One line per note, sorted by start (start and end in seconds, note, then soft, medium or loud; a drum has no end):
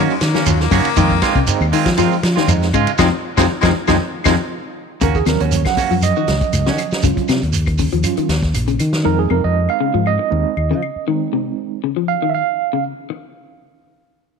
0.00 0.14 F#3 loud
0.00 0.15 F#3 medium
0.00 0.12 A#3 medium
0.00 0.12 C#4 medium
0.00 0.14 C#4 loud
0.00 0.14 D#4 loud
0.00 0.12 F#4 medium
0.10 0.25 G#3 medium
0.10 shekere soft
0.21 0.33 D#3 medium
0.21 0.48 A#3 loud
0.21 snare medium
0.21 ride bell medium
0.21 shekere medium
0.34 0.54 D#3 medium
0.34 0.50 A#3 medium
0.34 0.49 C#4 medium
0.34 snare medium
0.34 shekere soft
0.46 0.70 D#2 loud
0.46 0.65 F#3 medium
0.46 0.62 F#3 loud
0.46 0.65 C#4 medium
0.46 0.65 F4 medium
0.46 ride bell medium
0.46 claves medium
0.46 shekere loud
0.60 1.62 A#3 loud
0.60 snare soft
0.60 shekere soft
0.71 0.84 F#2 medium
0.71 0.91 C#3 medium
0.71 0.87 D#3 medium
0.71 0.88 A#3 medium
0.71 0.88 C#4 medium
0.71 0.88 F#4 medium
0.71 kick medium
0.71 snare soft
0.71 open hi-hat medium
0.71 claves medium
0.71 shekere medium
0.84 muted fingered electric bass stroke soft
0.84 ride bell medium
0.84 shekere soft
0.96 1.20 F2 medium
0.96 1.12 D#3 medium
0.96 1.17 D#3 loud
0.96 1.13 G#3 medium
0.96 1.15 G#3 medium
0.96 1.15 C4 medium
0.96 1.13 C4 medium
0.96 1.16 D#4 loud
0.96 1.13 F4 medium
0.96 kick loud
0.96 ride bell medium
0.96 shekere medium
1.10 kick medium
1.10 shekere soft
1.22 1.38 D#3 medium
1.22 1.38 G#3 medium
1.22 1.38 C4 medium
1.22 1.39 F4 medium
1.22 kick medium
1.22 snare medium
1.22 ride bell medium
1.22 claves medium
1.22 shekere medium
1.35 1.46 C2 medium
1.35 1.55 C#3 medium
1.35 kick medium
1.35 shekere soft
1.47 1.66 G#3 loud
1.47 1.66 C4 medium
1.47 1.66 D#4 loud
1.47 ride bell medium
1.47 shekere loud
1.61 1.71 D#2 loud
1.61 claves medium
1.61 shekere soft
1.72 1.88 D#3 medium
1.72 1.93 D#3 medium
1.72 1.89 G#3 medium
1.72 1.89 C4 medium
1.72 1.89 F4 medium
1.72 open hi-hat medium
1.72 shekere medium
1.86 2.09 F3 loud
1.86 kick medium
1.86 snare medium
1.86 ride bell medium
1.86 shekere soft
1.97 2.14 D#3 medium
1.97 2.18 F3 medium
1.97 2.16 G#3 loud
1.97 2.14 C4 medium
1.97 2.16 C4 loud
1.97 2.17 D#4 loud
1.97 2.14 F4 medium
1.97 muted clean electric guitar stroke medium
1.97 snare soft
1.97 ride bell medium
1.97 claves medium
1.97 shekere loud
2.12 shekere soft
2.23 2.35 F3 medium
2.23 snare medium
2.23 ride bell medium
2.23 shekere medium
2.36 2.57 D#3 medium
2.36 2.52 G#3 soft
2.36 2.51 C4 medium
2.36 2.51 F4 medium
2.36 snare medium
2.36 shekere soft
2.48 2.71 F2 loud
2.48 2.67 G#3 medium
2.48 2.67 C4 medium
2.48 2.67 D#4 loud
2.48 ride bell medium
2.48 claves medium
2.48 shekere loud
2.62 snare soft
2.62 shekere soft
2.74 2.86 G#2 medium
2.74 2.94 C#3 medium
2.74 2.90 G#3 medium
2.74 2.90 F4 medium
2.74 kick medium
2.74 ride bell medium
2.74 claves medium
2.74 shekere medium
2.87 muted fingered electric bass stroke soft
2.87 ride bell medium
2.87 shekere soft
2.98 3.09 F2 medium
2.98 3.08 C3 loud
2.98 3.08 D#3 loud
2.98 3.08 F3 loud
2.98 3.05 G#3 loud
2.98 3.08 G#3 loud
2.98 3.08 C4 loud
2.98 3.08 D#4 loud
2.98 3.08 F4 medium
2.98 kick medium
2.98 snare medium
2.98 claves loud
2.98 shekere loud
3.37 3.46 F2 medium
3.37 3.46 C3 loud
3.37 3.46 D#3 medium
3.37 3.45 F3 medium
3.37 3.45 F3 loud
3.37 3.43 G#3 loud
3.37 3.45 G#3 loud
3.37 3.45 C4 medium
3.37 3.46 C4 loud
3.37 3.46 D#4 loud
3.37 3.46 F4 loud
3.37 kick medium
3.37 snare medium
3.37 claves loud
3.37 shekere loud
3.61 3.72 F2 loud
3.61 3.71 C3 medium
3.61 3.71 D#3 loud
3.61 3.70 F3 loud
3.61 3.71 F3 loud
3.61 3.67 G#3 loud
3.61 3.70 G#3 loud
3.61 3.70 C4 loud
3.61 3.71 C4 loud
3.61 3.71 D#4 loud
3.61 3.71 F4 loud
3.61 kick medium
3.61 snare medium
3.61 claves loud
3.61 shekere loud
3.88 3.97 F2 medium
3.88 3.96 C3 medium
3.88 3.96 D#3 medium
3.88 3.96 F3 loud
3.88 3.96 F3 medium
3.88 3.94 G#3 loud
3.88 3.96 G#3 loud
3.88 3.96 C4 loud
3.88 3.96 C4 medium
3.88 3.97 D#4 medium
3.88 3.97 F4 medium
3.88 kick medium
3.88 snare medium
3.88 claves loud
3.88 shekere loud
4.24 4.36 F2 loud
4.24 4.34 C3 medium
4.24 4.34 D#3 loud
4.24 4.34 F3 loud
4.24 4.32 G#3 loud
4.24 4.34 G#3 loud
4.24 4.34 C4 loud
4.24 4.35 C4 loud
4.24 4.34 D#4 medium
4.24 4.35 F4 loud
4.24 kick medium
4.24 snare medium
4.24 claves loud
4.24 shekere loud
5.01 5.24 D#2 medium
5.01 5.21 C#3 medium
5.01 5.17 A#3 medium
5.01 5.17 C#4 medium
5.01 5.18 F#4 medium
5.01 5.15 A#4 medium
5.01 kick medium
5.01 closed hi-hat medium
5.01 shekere medium
5.15 5.26 G#4 medium
5.15 kick medium
5.15 shekere soft
5.26 5.39 D#2 medium
5.26 5.46 C3 medium
5.26 7.26 F3 medium
5.26 7.02 F#3 medium
5.26 7.02 C#4 soft
5.26 5.40 A#4 medium
5.26 snare medium
5.26 closed hi-hat medium
5.26 claves medium
5.26 shekere medium
5.40 5.63 D#2 medium
5.40 5.55 C#4 soft
5.40 5.55 F#4 soft
5.40 5.65 C#5 medium
5.40 closed hi-hat soft
5.40 shekere soft
5.51 closed hi-hat medium
5.51 shekere medium
5.65 6.02 F#5 medium
5.65 kick medium
5.65 snare medium
5.65 closed hi-hat soft
5.65 claves medium
5.65 shekere soft
5.77 5.93 A#3 medium
5.77 5.93 C#4 medium
5.77 5.94 F#4 medium
5.77 muted clean electric guitar stroke medium
5.77 kick medium
5.77 snare soft
5.77 open hi-hat medium
5.77 shekere medium
5.91 6.13 F#2 medium
5.91 6.10 F3 medium
5.91 shekere soft
6.02 7.01 D#5 loud
6.02 closed hi-hat medium
6.02 claves medium
6.02 shekere medium
6.16 6.36 D#3 medium
6.16 6.31 F#4 medium
6.16 muted clean electric guitar stroke soft
6.16 shekere soft
6.28 6.40 C#2 loud
6.28 snare medium
6.28 closed hi-hat medium
6.28 shekere medium
6.41 kick medium
6.41 closed hi-hat soft
6.41 shekere soft
6.53 6.69 C#2 medium
6.53 closed hi-hat medium
6.53 claves medium
6.53 shekere medium
6.66 6.86 C#3 medium
6.66 6.77 D#3 medium
6.66 6.82 C#4 soft
6.66 6.81 F#4 medium
6.66 snare medium
6.66 shekere soft
6.78 closed hi-hat soft
6.78 claves medium
6.78 shekere medium
6.91 muted fingered electric bass stroke soft
6.91 snare medium
6.91 shekere soft
7.03 7.15 C#2 loud
7.03 7.23 C#3 medium
7.03 7.37 F#3 medium
7.03 7.38 C#4 soft
7.03 7.38 F4 medium
7.03 kick medium
7.03 closed hi-hat medium
7.03 shekere medium
7.17 kick medium
7.17 closed hi-hat soft
7.17 shekere soft
7.28 7.41 C3 medium
7.28 7.48 C3 medium
7.28 snare medium
7.28 closed hi-hat soft
7.28 claves medium
7.28 shekere medium
7.42 7.87 D#2 medium
7.42 closed hi-hat soft
7.42 shekere soft
7.53 closed hi-hat medium
7.53 shekere medium
7.66 kick medium
7.66 closed hi-hat soft
7.66 claves medium
7.66 shekere soft
7.78 7.89 C#3 medium
7.78 kick medium
7.78 open hi-hat medium
7.78 shekere medium
7.92 8.03 D#2 medium
7.92 8.12 F3 medium
7.92 closed hi-hat soft
7.92 shekere soft
8.04 8.27 F#3 soft
8.04 8.27 C#4 soft
8.04 8.27 F4 medium
8.04 closed hi-hat medium
8.04 claves medium
8.04 shekere medium
8.17 8.37 D#3 medium
8.17 muted fingered electric bass stroke soft
8.17 closed hi-hat soft
8.17 shekere soft
8.29 8.52 D#2 medium
8.29 snare medium
8.29 closed hi-hat soft
8.29 shekere medium
8.42 kick medium
8.42 snare soft
8.42 shekere soft
8.54 8.77 A#1 loud
8.54 closed hi-hat medium
8.54 claves medium
8.54 shekere medium
8.68 8.87 C#3 medium
8.68 closed hi-hat soft
8.68 shekere soft
8.79 9.03 D#3 medium
8.79 closed hi-hat medium
8.79 claves medium
8.79 shekere medium
8.93 snare medium
8.93 shekere soft
9.04 9.28 F2 medium
9.04 9.24 D#3 medium
9.04 10.29 G#3 medium
9.04 10.30 C4 soft
9.04 10.30 D#4 medium
9.04 9.18 A#4 loud
9.19 9.30 G#4 medium
9.30 9.42 F2 medium
9.30 9.50 C3 medium
9.30 9.43 A#4 medium
9.30 claves medium
9.44 9.67 F2 medium
9.44 9.69 D#5 medium
9.69 10.05 F5 medium
9.69 claves medium
9.81 9.91 C#3 medium
9.94 10.17 G#2 medium
9.94 10.13 F3 medium
10.06 11.05 D#5 loud
10.06 claves medium
10.19 muted clean electric guitar stroke medium
10.31 10.44 D#2 loud
10.31 10.54 G#3 soft
10.31 10.54 C4 soft
10.31 10.54 D#4 soft
10.57 10.72 D#2 medium
10.57 claves medium
10.70 10.90 C#3 medium
10.70 10.81 F3 medium
10.82 claves medium
10.96 muted fingered electric bass stroke soft
11.07 11.27 D#3 medium
11.07 11.79 G#3 soft
11.07 11.79 C4 soft
11.07 11.80 D#4 medium
11.33 11.52 C3 medium
11.84 11.94 C#3 medium
11.96 12.16 F3 medium
12.08 12.33 F5 medium
12.22 12.41 D#3 medium
12.30 12.33 E5 medium
12.35 12.83 F5 medium
12.73 12.92 C#3 medium
13.10 muted clean electric guitar stroke medium